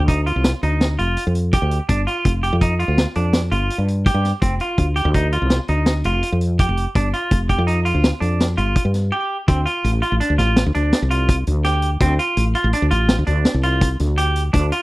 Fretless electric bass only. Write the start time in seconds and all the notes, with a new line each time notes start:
0.00 D2
0.36 C2
0.63 D2
0.99 F1
1.27 F2
1.62 D2
1.89 G1
2.26 F1
2.53 F2
2.88 D2
3.16 F2
3.52 G1
3.78 G2
4.14 G2
4.42 F1
4.78 D2
5.05 D2
5.42 C2
5.69 D2
6.05 F1
6.32 F2
6.69 F1
6.95 G1
7.32 F1
7.58 F2
7.94 D2
8.21 F2
8.58 G1
8.85 G2
9.49 D2
9.84 A1
10.12 A1
10.30 D2
10.38 A1
10.66 D2
10.75 D2
11.02 C2
11.47 D2
12.01 D2
12.37 A1
12.64 A1
12.82 D2
12.91 A1
13.19 D2
13.27 D2
13.54 C2
14.00 D2
14.54 D2